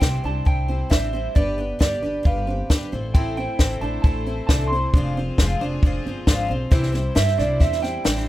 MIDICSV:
0, 0, Header, 1, 7, 480
1, 0, Start_track
1, 0, Key_signature, 0, "major"
1, 0, Tempo, 447094
1, 1457, Time_signature, 4, 2, 24, 8
1, 8893, End_track
2, 0, Start_track
2, 0, Title_t, "Clean electric guitar"
2, 0, Program_c, 0, 27
2, 0, Note_on_c, 0, 79, 93
2, 246, Note_off_c, 0, 79, 0
2, 273, Note_on_c, 0, 81, 88
2, 502, Note_off_c, 0, 81, 0
2, 506, Note_on_c, 0, 79, 88
2, 971, Note_on_c, 0, 76, 84
2, 996, Note_off_c, 0, 79, 0
2, 1448, Note_off_c, 0, 76, 0
2, 1452, Note_on_c, 0, 74, 74
2, 1928, Note_off_c, 0, 74, 0
2, 1941, Note_on_c, 0, 74, 77
2, 2425, Note_off_c, 0, 74, 0
2, 2430, Note_on_c, 0, 77, 73
2, 2872, Note_off_c, 0, 77, 0
2, 3372, Note_on_c, 0, 79, 79
2, 3609, Note_off_c, 0, 79, 0
2, 3622, Note_on_c, 0, 79, 80
2, 4088, Note_off_c, 0, 79, 0
2, 4093, Note_on_c, 0, 81, 70
2, 4304, Note_off_c, 0, 81, 0
2, 4317, Note_on_c, 0, 81, 85
2, 4785, Note_off_c, 0, 81, 0
2, 4798, Note_on_c, 0, 81, 86
2, 5015, Note_off_c, 0, 81, 0
2, 5020, Note_on_c, 0, 84, 97
2, 6677, Note_off_c, 0, 84, 0
2, 7210, Note_on_c, 0, 72, 86
2, 7681, Note_on_c, 0, 76, 93
2, 7709, Note_off_c, 0, 72, 0
2, 7930, Note_on_c, 0, 74, 86
2, 7937, Note_off_c, 0, 76, 0
2, 8169, Note_on_c, 0, 76, 92
2, 8181, Note_off_c, 0, 74, 0
2, 8397, Note_off_c, 0, 76, 0
2, 8401, Note_on_c, 0, 79, 96
2, 8893, Note_off_c, 0, 79, 0
2, 8893, End_track
3, 0, Start_track
3, 0, Title_t, "Twelve-string acoustic guitar"
3, 0, Program_c, 1, 25
3, 5, Note_on_c, 1, 48, 61
3, 11, Note_on_c, 1, 55, 64
3, 13, Note_on_c, 1, 52, 66
3, 22, Note_on_c, 1, 64, 67
3, 27, Note_on_c, 1, 60, 61
3, 31, Note_on_c, 1, 72, 69
3, 241, Note_off_c, 1, 72, 0
3, 246, Note_off_c, 1, 64, 0
3, 250, Note_off_c, 1, 48, 0
3, 253, Note_off_c, 1, 55, 0
3, 253, Note_on_c, 1, 72, 43
3, 254, Note_off_c, 1, 52, 0
3, 259, Note_on_c, 1, 64, 42
3, 260, Note_off_c, 1, 60, 0
3, 273, Note_on_c, 1, 60, 45
3, 286, Note_on_c, 1, 55, 41
3, 471, Note_off_c, 1, 55, 0
3, 478, Note_off_c, 1, 60, 0
3, 484, Note_on_c, 1, 55, 50
3, 491, Note_on_c, 1, 60, 52
3, 494, Note_off_c, 1, 72, 0
3, 497, Note_off_c, 1, 64, 0
3, 508, Note_on_c, 1, 64, 51
3, 511, Note_on_c, 1, 72, 47
3, 721, Note_off_c, 1, 72, 0
3, 730, Note_off_c, 1, 55, 0
3, 733, Note_off_c, 1, 60, 0
3, 733, Note_off_c, 1, 64, 0
3, 734, Note_on_c, 1, 72, 46
3, 746, Note_on_c, 1, 64, 41
3, 755, Note_on_c, 1, 60, 40
3, 762, Note_on_c, 1, 55, 40
3, 953, Note_off_c, 1, 55, 0
3, 961, Note_off_c, 1, 60, 0
3, 961, Note_on_c, 1, 48, 68
3, 965, Note_on_c, 1, 52, 63
3, 966, Note_on_c, 1, 55, 65
3, 968, Note_off_c, 1, 72, 0
3, 972, Note_off_c, 1, 64, 0
3, 974, Note_on_c, 1, 60, 65
3, 981, Note_on_c, 1, 72, 65
3, 985, Note_on_c, 1, 64, 68
3, 1201, Note_off_c, 1, 72, 0
3, 1209, Note_off_c, 1, 48, 0
3, 1211, Note_off_c, 1, 52, 0
3, 1211, Note_off_c, 1, 55, 0
3, 1214, Note_on_c, 1, 72, 51
3, 1216, Note_off_c, 1, 60, 0
3, 1218, Note_off_c, 1, 64, 0
3, 1231, Note_on_c, 1, 60, 41
3, 1231, Note_on_c, 1, 64, 40
3, 1247, Note_on_c, 1, 55, 37
3, 1437, Note_off_c, 1, 55, 0
3, 1450, Note_on_c, 1, 55, 66
3, 1456, Note_off_c, 1, 72, 0
3, 1457, Note_off_c, 1, 60, 0
3, 1460, Note_off_c, 1, 64, 0
3, 1461, Note_on_c, 1, 62, 68
3, 1465, Note_on_c, 1, 67, 73
3, 1470, Note_on_c, 1, 71, 78
3, 1682, Note_off_c, 1, 71, 0
3, 1692, Note_off_c, 1, 67, 0
3, 1694, Note_off_c, 1, 55, 0
3, 1695, Note_on_c, 1, 71, 49
3, 1700, Note_off_c, 1, 62, 0
3, 1705, Note_on_c, 1, 67, 45
3, 1722, Note_on_c, 1, 62, 41
3, 1918, Note_off_c, 1, 62, 0
3, 1920, Note_off_c, 1, 67, 0
3, 1921, Note_on_c, 1, 55, 67
3, 1931, Note_on_c, 1, 62, 71
3, 1933, Note_on_c, 1, 67, 70
3, 1934, Note_off_c, 1, 71, 0
3, 1947, Note_on_c, 1, 71, 70
3, 2162, Note_off_c, 1, 71, 0
3, 2170, Note_off_c, 1, 55, 0
3, 2175, Note_off_c, 1, 62, 0
3, 2175, Note_on_c, 1, 71, 51
3, 2176, Note_off_c, 1, 67, 0
3, 2196, Note_on_c, 1, 67, 46
3, 2209, Note_on_c, 1, 62, 43
3, 2393, Note_on_c, 1, 55, 58
3, 2396, Note_off_c, 1, 62, 0
3, 2402, Note_off_c, 1, 67, 0
3, 2409, Note_on_c, 1, 62, 51
3, 2415, Note_on_c, 1, 67, 58
3, 2417, Note_off_c, 1, 71, 0
3, 2432, Note_on_c, 1, 71, 67
3, 2639, Note_off_c, 1, 71, 0
3, 2646, Note_off_c, 1, 55, 0
3, 2652, Note_on_c, 1, 71, 47
3, 2654, Note_off_c, 1, 62, 0
3, 2657, Note_off_c, 1, 67, 0
3, 2669, Note_on_c, 1, 67, 46
3, 2689, Note_on_c, 1, 62, 42
3, 2887, Note_off_c, 1, 62, 0
3, 2894, Note_off_c, 1, 67, 0
3, 2896, Note_off_c, 1, 71, 0
3, 2896, Note_on_c, 1, 55, 67
3, 2899, Note_on_c, 1, 62, 64
3, 2907, Note_on_c, 1, 67, 68
3, 2921, Note_on_c, 1, 71, 80
3, 3132, Note_off_c, 1, 71, 0
3, 3136, Note_on_c, 1, 72, 52
3, 3138, Note_off_c, 1, 55, 0
3, 3140, Note_off_c, 1, 62, 0
3, 3141, Note_off_c, 1, 67, 0
3, 3145, Note_on_c, 1, 64, 54
3, 3158, Note_on_c, 1, 60, 53
3, 3165, Note_on_c, 1, 57, 43
3, 3369, Note_off_c, 1, 57, 0
3, 3375, Note_off_c, 1, 60, 0
3, 3376, Note_on_c, 1, 45, 71
3, 3379, Note_off_c, 1, 72, 0
3, 3382, Note_on_c, 1, 52, 79
3, 3382, Note_on_c, 1, 57, 83
3, 3383, Note_off_c, 1, 64, 0
3, 3388, Note_on_c, 1, 60, 85
3, 3394, Note_on_c, 1, 72, 84
3, 3395, Note_on_c, 1, 64, 80
3, 3606, Note_off_c, 1, 72, 0
3, 3613, Note_off_c, 1, 64, 0
3, 3619, Note_off_c, 1, 45, 0
3, 3619, Note_on_c, 1, 72, 56
3, 3622, Note_off_c, 1, 52, 0
3, 3622, Note_off_c, 1, 57, 0
3, 3625, Note_off_c, 1, 60, 0
3, 3626, Note_on_c, 1, 64, 47
3, 3641, Note_on_c, 1, 60, 40
3, 3651, Note_on_c, 1, 57, 37
3, 3853, Note_off_c, 1, 57, 0
3, 3854, Note_on_c, 1, 45, 68
3, 3860, Note_off_c, 1, 72, 0
3, 3862, Note_off_c, 1, 60, 0
3, 3862, Note_on_c, 1, 52, 71
3, 3864, Note_off_c, 1, 64, 0
3, 3866, Note_on_c, 1, 57, 67
3, 3875, Note_on_c, 1, 60, 82
3, 3878, Note_on_c, 1, 64, 70
3, 3880, Note_on_c, 1, 72, 80
3, 4081, Note_off_c, 1, 72, 0
3, 4094, Note_on_c, 1, 72, 56
3, 4097, Note_off_c, 1, 64, 0
3, 4098, Note_off_c, 1, 45, 0
3, 4102, Note_off_c, 1, 52, 0
3, 4104, Note_off_c, 1, 57, 0
3, 4108, Note_off_c, 1, 60, 0
3, 4110, Note_on_c, 1, 64, 44
3, 4122, Note_on_c, 1, 60, 49
3, 4134, Note_on_c, 1, 57, 41
3, 4321, Note_off_c, 1, 57, 0
3, 4334, Note_on_c, 1, 57, 56
3, 4335, Note_off_c, 1, 60, 0
3, 4338, Note_off_c, 1, 72, 0
3, 4341, Note_off_c, 1, 64, 0
3, 4348, Note_on_c, 1, 60, 61
3, 4354, Note_on_c, 1, 64, 57
3, 4370, Note_on_c, 1, 72, 70
3, 4566, Note_off_c, 1, 72, 0
3, 4573, Note_off_c, 1, 64, 0
3, 4578, Note_off_c, 1, 57, 0
3, 4578, Note_on_c, 1, 72, 51
3, 4585, Note_off_c, 1, 60, 0
3, 4586, Note_on_c, 1, 64, 44
3, 4601, Note_on_c, 1, 60, 49
3, 4610, Note_on_c, 1, 57, 40
3, 4820, Note_off_c, 1, 72, 0
3, 4824, Note_off_c, 1, 64, 0
3, 4830, Note_on_c, 1, 45, 76
3, 4832, Note_off_c, 1, 57, 0
3, 4832, Note_off_c, 1, 60, 0
3, 4838, Note_on_c, 1, 52, 64
3, 4845, Note_on_c, 1, 57, 65
3, 4846, Note_on_c, 1, 60, 73
3, 4850, Note_on_c, 1, 64, 79
3, 4856, Note_on_c, 1, 72, 75
3, 5062, Note_off_c, 1, 72, 0
3, 5066, Note_off_c, 1, 45, 0
3, 5070, Note_off_c, 1, 52, 0
3, 5074, Note_off_c, 1, 57, 0
3, 5074, Note_off_c, 1, 60, 0
3, 5075, Note_on_c, 1, 72, 47
3, 5076, Note_off_c, 1, 64, 0
3, 5091, Note_on_c, 1, 64, 48
3, 5101, Note_on_c, 1, 60, 47
3, 5109, Note_on_c, 1, 57, 43
3, 5309, Note_off_c, 1, 72, 0
3, 5317, Note_off_c, 1, 64, 0
3, 5318, Note_on_c, 1, 53, 72
3, 5322, Note_off_c, 1, 60, 0
3, 5326, Note_off_c, 1, 57, 0
3, 5330, Note_on_c, 1, 56, 74
3, 5333, Note_on_c, 1, 60, 70
3, 5337, Note_on_c, 1, 65, 75
3, 5344, Note_on_c, 1, 72, 83
3, 5539, Note_off_c, 1, 72, 0
3, 5550, Note_off_c, 1, 53, 0
3, 5552, Note_on_c, 1, 72, 50
3, 5556, Note_off_c, 1, 56, 0
3, 5558, Note_off_c, 1, 60, 0
3, 5560, Note_off_c, 1, 65, 0
3, 5571, Note_on_c, 1, 65, 51
3, 5585, Note_on_c, 1, 60, 36
3, 5787, Note_off_c, 1, 72, 0
3, 5797, Note_off_c, 1, 65, 0
3, 5798, Note_off_c, 1, 60, 0
3, 5799, Note_on_c, 1, 53, 84
3, 5805, Note_on_c, 1, 56, 83
3, 5811, Note_on_c, 1, 60, 84
3, 5818, Note_on_c, 1, 72, 83
3, 5820, Note_on_c, 1, 65, 80
3, 6012, Note_off_c, 1, 72, 0
3, 6025, Note_on_c, 1, 72, 68
3, 6030, Note_off_c, 1, 65, 0
3, 6031, Note_off_c, 1, 53, 0
3, 6034, Note_off_c, 1, 56, 0
3, 6037, Note_off_c, 1, 60, 0
3, 6043, Note_on_c, 1, 65, 57
3, 6060, Note_on_c, 1, 60, 53
3, 6263, Note_off_c, 1, 72, 0
3, 6265, Note_on_c, 1, 56, 54
3, 6270, Note_off_c, 1, 60, 0
3, 6273, Note_off_c, 1, 65, 0
3, 6283, Note_on_c, 1, 60, 68
3, 6293, Note_on_c, 1, 65, 68
3, 6299, Note_on_c, 1, 72, 72
3, 6499, Note_off_c, 1, 72, 0
3, 6503, Note_off_c, 1, 56, 0
3, 6512, Note_off_c, 1, 60, 0
3, 6512, Note_off_c, 1, 65, 0
3, 6512, Note_on_c, 1, 72, 58
3, 6525, Note_on_c, 1, 65, 49
3, 6538, Note_on_c, 1, 60, 48
3, 6739, Note_on_c, 1, 53, 78
3, 6741, Note_off_c, 1, 60, 0
3, 6746, Note_off_c, 1, 65, 0
3, 6746, Note_off_c, 1, 72, 0
3, 6748, Note_on_c, 1, 56, 80
3, 6754, Note_on_c, 1, 60, 78
3, 6759, Note_on_c, 1, 65, 84
3, 6764, Note_on_c, 1, 72, 89
3, 6948, Note_off_c, 1, 72, 0
3, 6961, Note_on_c, 1, 72, 58
3, 6973, Note_off_c, 1, 65, 0
3, 6980, Note_off_c, 1, 53, 0
3, 6984, Note_off_c, 1, 56, 0
3, 6984, Note_off_c, 1, 60, 0
3, 6986, Note_on_c, 1, 65, 53
3, 6996, Note_on_c, 1, 60, 53
3, 7200, Note_off_c, 1, 60, 0
3, 7201, Note_on_c, 1, 48, 65
3, 7209, Note_on_c, 1, 55, 76
3, 7210, Note_on_c, 1, 52, 77
3, 7211, Note_off_c, 1, 72, 0
3, 7212, Note_off_c, 1, 65, 0
3, 7213, Note_on_c, 1, 60, 86
3, 7217, Note_on_c, 1, 64, 86
3, 7224, Note_on_c, 1, 72, 79
3, 7420, Note_off_c, 1, 72, 0
3, 7432, Note_on_c, 1, 72, 60
3, 7436, Note_off_c, 1, 64, 0
3, 7442, Note_off_c, 1, 60, 0
3, 7449, Note_on_c, 1, 64, 48
3, 7450, Note_off_c, 1, 48, 0
3, 7451, Note_off_c, 1, 55, 0
3, 7455, Note_off_c, 1, 52, 0
3, 7455, Note_on_c, 1, 60, 42
3, 7464, Note_on_c, 1, 55, 38
3, 7671, Note_off_c, 1, 55, 0
3, 7677, Note_on_c, 1, 48, 74
3, 7681, Note_off_c, 1, 60, 0
3, 7683, Note_off_c, 1, 64, 0
3, 7683, Note_on_c, 1, 55, 70
3, 7686, Note_off_c, 1, 72, 0
3, 7686, Note_on_c, 1, 52, 74
3, 7694, Note_on_c, 1, 60, 86
3, 7696, Note_on_c, 1, 64, 82
3, 7706, Note_on_c, 1, 72, 75
3, 7903, Note_off_c, 1, 72, 0
3, 7916, Note_on_c, 1, 72, 53
3, 7923, Note_off_c, 1, 64, 0
3, 7927, Note_off_c, 1, 48, 0
3, 7931, Note_off_c, 1, 55, 0
3, 7932, Note_off_c, 1, 52, 0
3, 7932, Note_off_c, 1, 60, 0
3, 7936, Note_on_c, 1, 64, 51
3, 7944, Note_on_c, 1, 60, 52
3, 7954, Note_on_c, 1, 55, 45
3, 8145, Note_off_c, 1, 55, 0
3, 8158, Note_on_c, 1, 55, 50
3, 8161, Note_off_c, 1, 60, 0
3, 8167, Note_off_c, 1, 72, 0
3, 8168, Note_off_c, 1, 64, 0
3, 8174, Note_on_c, 1, 60, 60
3, 8181, Note_on_c, 1, 64, 61
3, 8193, Note_on_c, 1, 72, 62
3, 8379, Note_off_c, 1, 72, 0
3, 8392, Note_off_c, 1, 64, 0
3, 8392, Note_on_c, 1, 72, 44
3, 8405, Note_off_c, 1, 60, 0
3, 8405, Note_on_c, 1, 64, 51
3, 8407, Note_off_c, 1, 55, 0
3, 8418, Note_on_c, 1, 60, 43
3, 8428, Note_on_c, 1, 55, 45
3, 8636, Note_off_c, 1, 60, 0
3, 8637, Note_off_c, 1, 55, 0
3, 8637, Note_on_c, 1, 48, 73
3, 8644, Note_off_c, 1, 72, 0
3, 8644, Note_on_c, 1, 52, 70
3, 8649, Note_on_c, 1, 55, 83
3, 8649, Note_on_c, 1, 60, 76
3, 8650, Note_off_c, 1, 64, 0
3, 8661, Note_on_c, 1, 64, 66
3, 8664, Note_on_c, 1, 72, 88
3, 8857, Note_off_c, 1, 72, 0
3, 8870, Note_off_c, 1, 64, 0
3, 8883, Note_off_c, 1, 60, 0
3, 8885, Note_off_c, 1, 55, 0
3, 8886, Note_off_c, 1, 48, 0
3, 8889, Note_off_c, 1, 52, 0
3, 8893, End_track
4, 0, Start_track
4, 0, Title_t, "Upright piano"
4, 0, Program_c, 2, 0
4, 0, Note_on_c, 2, 60, 67
4, 245, Note_off_c, 2, 60, 0
4, 258, Note_on_c, 2, 62, 68
4, 727, Note_off_c, 2, 62, 0
4, 740, Note_on_c, 2, 60, 71
4, 973, Note_off_c, 2, 60, 0
4, 975, Note_on_c, 2, 62, 67
4, 1211, Note_off_c, 2, 62, 0
4, 1215, Note_on_c, 2, 60, 68
4, 1451, Note_off_c, 2, 60, 0
4, 1457, Note_on_c, 2, 62, 82
4, 1693, Note_off_c, 2, 62, 0
4, 1696, Note_on_c, 2, 59, 66
4, 2168, Note_off_c, 2, 59, 0
4, 2171, Note_on_c, 2, 62, 69
4, 2646, Note_off_c, 2, 62, 0
4, 2656, Note_on_c, 2, 60, 77
4, 2893, Note_off_c, 2, 60, 0
4, 2900, Note_on_c, 2, 62, 75
4, 3135, Note_off_c, 2, 62, 0
4, 3138, Note_on_c, 2, 60, 66
4, 3375, Note_off_c, 2, 60, 0
4, 3388, Note_on_c, 2, 64, 83
4, 3620, Note_off_c, 2, 64, 0
4, 3629, Note_on_c, 2, 60, 79
4, 4096, Note_off_c, 2, 60, 0
4, 4103, Note_on_c, 2, 62, 74
4, 4573, Note_off_c, 2, 62, 0
4, 4582, Note_on_c, 2, 60, 70
4, 4817, Note_off_c, 2, 60, 0
4, 4827, Note_on_c, 2, 62, 75
4, 5060, Note_off_c, 2, 62, 0
4, 5064, Note_on_c, 2, 60, 72
4, 5298, Note_off_c, 2, 60, 0
4, 5300, Note_on_c, 2, 62, 83
4, 5536, Note_off_c, 2, 62, 0
4, 5551, Note_on_c, 2, 60, 72
4, 6017, Note_off_c, 2, 60, 0
4, 6023, Note_on_c, 2, 62, 84
4, 6492, Note_off_c, 2, 62, 0
4, 6500, Note_on_c, 2, 60, 77
4, 6736, Note_off_c, 2, 60, 0
4, 6741, Note_on_c, 2, 62, 79
4, 6973, Note_on_c, 2, 60, 71
4, 6976, Note_off_c, 2, 62, 0
4, 7212, Note_off_c, 2, 60, 0
4, 7215, Note_on_c, 2, 64, 86
4, 7452, Note_off_c, 2, 64, 0
4, 7453, Note_on_c, 2, 60, 73
4, 7926, Note_off_c, 2, 60, 0
4, 7927, Note_on_c, 2, 62, 76
4, 8402, Note_off_c, 2, 62, 0
4, 8410, Note_on_c, 2, 60, 83
4, 8641, Note_on_c, 2, 62, 84
4, 8648, Note_off_c, 2, 60, 0
4, 8883, Note_off_c, 2, 62, 0
4, 8893, End_track
5, 0, Start_track
5, 0, Title_t, "String section"
5, 0, Program_c, 3, 48
5, 3370, Note_on_c, 3, 64, 81
5, 3376, Note_on_c, 3, 60, 69
5, 3378, Note_on_c, 3, 57, 74
5, 5278, Note_off_c, 3, 64, 0
5, 5282, Note_off_c, 3, 57, 0
5, 5296, Note_on_c, 3, 68, 79
5, 5302, Note_on_c, 3, 53, 74
5, 7180, Note_off_c, 3, 60, 0
5, 7198, Note_off_c, 3, 68, 0
5, 7201, Note_off_c, 3, 53, 0
5, 7205, Note_on_c, 3, 48, 86
5, 7209, Note_on_c, 3, 55, 68
5, 7209, Note_on_c, 3, 64, 80
5, 8893, Note_off_c, 3, 48, 0
5, 8893, Note_off_c, 3, 55, 0
5, 8893, Note_off_c, 3, 64, 0
5, 8893, End_track
6, 0, Start_track
6, 0, Title_t, "Upright bass"
6, 0, Program_c, 4, 32
6, 15, Note_on_c, 4, 36, 87
6, 204, Note_off_c, 4, 36, 0
6, 259, Note_on_c, 4, 36, 75
6, 448, Note_off_c, 4, 36, 0
6, 496, Note_on_c, 4, 36, 71
6, 876, Note_off_c, 4, 36, 0
6, 981, Note_on_c, 4, 33, 75
6, 1359, Note_off_c, 4, 33, 0
6, 1458, Note_on_c, 4, 31, 78
6, 1838, Note_off_c, 4, 31, 0
6, 1939, Note_on_c, 4, 31, 92
6, 2129, Note_off_c, 4, 31, 0
6, 2178, Note_on_c, 4, 31, 70
6, 2368, Note_off_c, 4, 31, 0
6, 2418, Note_on_c, 4, 31, 80
6, 2799, Note_off_c, 4, 31, 0
6, 2897, Note_on_c, 4, 31, 82
6, 3088, Note_off_c, 4, 31, 0
6, 3143, Note_on_c, 4, 33, 101
6, 3713, Note_off_c, 4, 33, 0
6, 3856, Note_on_c, 4, 33, 96
6, 4048, Note_off_c, 4, 33, 0
6, 4094, Note_on_c, 4, 33, 72
6, 4287, Note_off_c, 4, 33, 0
6, 4332, Note_on_c, 4, 33, 79
6, 4716, Note_off_c, 4, 33, 0
6, 4818, Note_on_c, 4, 36, 84
6, 5200, Note_off_c, 4, 36, 0
6, 5298, Note_on_c, 4, 29, 89
6, 5679, Note_off_c, 4, 29, 0
6, 5777, Note_on_c, 4, 29, 96
6, 5969, Note_off_c, 4, 29, 0
6, 6023, Note_on_c, 4, 29, 85
6, 6213, Note_off_c, 4, 29, 0
6, 6256, Note_on_c, 4, 29, 74
6, 6448, Note_off_c, 4, 29, 0
6, 6509, Note_on_c, 4, 31, 73
6, 6721, Note_off_c, 4, 31, 0
6, 6732, Note_on_c, 4, 32, 80
6, 6952, Note_off_c, 4, 32, 0
6, 6980, Note_on_c, 4, 35, 80
6, 7196, Note_off_c, 4, 35, 0
6, 7207, Note_on_c, 4, 36, 93
6, 7591, Note_off_c, 4, 36, 0
6, 7691, Note_on_c, 4, 43, 96
6, 7927, Note_on_c, 4, 36, 81
6, 7943, Note_off_c, 4, 43, 0
6, 8121, Note_off_c, 4, 36, 0
6, 8164, Note_on_c, 4, 40, 87
6, 8548, Note_off_c, 4, 40, 0
6, 8651, Note_on_c, 4, 33, 84
6, 8893, Note_off_c, 4, 33, 0
6, 8893, End_track
7, 0, Start_track
7, 0, Title_t, "Drums"
7, 17, Note_on_c, 9, 36, 74
7, 18, Note_on_c, 9, 38, 88
7, 124, Note_off_c, 9, 36, 0
7, 125, Note_off_c, 9, 38, 0
7, 498, Note_on_c, 9, 36, 91
7, 605, Note_off_c, 9, 36, 0
7, 980, Note_on_c, 9, 36, 78
7, 981, Note_on_c, 9, 38, 97
7, 1088, Note_off_c, 9, 36, 0
7, 1088, Note_off_c, 9, 38, 0
7, 1460, Note_on_c, 9, 36, 94
7, 1567, Note_off_c, 9, 36, 0
7, 1939, Note_on_c, 9, 36, 74
7, 1939, Note_on_c, 9, 38, 96
7, 2046, Note_off_c, 9, 38, 0
7, 2047, Note_off_c, 9, 36, 0
7, 2419, Note_on_c, 9, 36, 88
7, 2526, Note_off_c, 9, 36, 0
7, 2899, Note_on_c, 9, 36, 83
7, 2899, Note_on_c, 9, 38, 104
7, 3006, Note_off_c, 9, 36, 0
7, 3006, Note_off_c, 9, 38, 0
7, 3378, Note_on_c, 9, 36, 104
7, 3485, Note_off_c, 9, 36, 0
7, 3854, Note_on_c, 9, 38, 96
7, 3858, Note_on_c, 9, 36, 83
7, 3961, Note_off_c, 9, 38, 0
7, 3965, Note_off_c, 9, 36, 0
7, 4338, Note_on_c, 9, 36, 96
7, 4445, Note_off_c, 9, 36, 0
7, 4819, Note_on_c, 9, 36, 75
7, 4819, Note_on_c, 9, 38, 91
7, 4927, Note_off_c, 9, 36, 0
7, 4927, Note_off_c, 9, 38, 0
7, 5300, Note_on_c, 9, 36, 101
7, 5407, Note_off_c, 9, 36, 0
7, 5779, Note_on_c, 9, 36, 82
7, 5779, Note_on_c, 9, 38, 95
7, 5886, Note_off_c, 9, 36, 0
7, 5886, Note_off_c, 9, 38, 0
7, 6256, Note_on_c, 9, 36, 94
7, 6363, Note_off_c, 9, 36, 0
7, 6732, Note_on_c, 9, 38, 114
7, 6734, Note_on_c, 9, 36, 84
7, 6840, Note_off_c, 9, 38, 0
7, 6841, Note_off_c, 9, 36, 0
7, 7204, Note_on_c, 9, 38, 36
7, 7210, Note_on_c, 9, 36, 113
7, 7311, Note_off_c, 9, 38, 0
7, 7318, Note_off_c, 9, 36, 0
7, 7329, Note_on_c, 9, 38, 34
7, 7436, Note_off_c, 9, 38, 0
7, 7450, Note_on_c, 9, 38, 31
7, 7557, Note_off_c, 9, 38, 0
7, 7685, Note_on_c, 9, 38, 107
7, 7793, Note_off_c, 9, 38, 0
7, 7809, Note_on_c, 9, 38, 31
7, 7917, Note_off_c, 9, 38, 0
7, 7929, Note_on_c, 9, 38, 35
7, 8036, Note_off_c, 9, 38, 0
7, 8159, Note_on_c, 9, 38, 30
7, 8165, Note_on_c, 9, 36, 81
7, 8267, Note_off_c, 9, 38, 0
7, 8273, Note_off_c, 9, 36, 0
7, 8290, Note_on_c, 9, 38, 36
7, 8397, Note_off_c, 9, 38, 0
7, 8409, Note_on_c, 9, 38, 33
7, 8516, Note_off_c, 9, 38, 0
7, 8643, Note_on_c, 9, 38, 114
7, 8751, Note_off_c, 9, 38, 0
7, 8768, Note_on_c, 9, 38, 32
7, 8875, Note_off_c, 9, 38, 0
7, 8893, End_track
0, 0, End_of_file